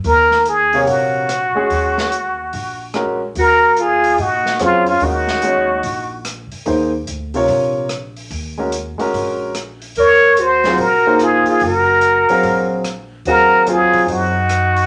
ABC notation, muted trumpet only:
X:1
M:4/4
L:1/8
Q:"Swing" 1/4=146
K:Ebdor
V:1 name="Muted trumpet"
B2 A2 G4- | G6 z2 | B2 A2 G2 F F | G6 z2 |
z8 | z8 | d2 c2 B2 A A | B6 z2 |
B2 A2 G4 |]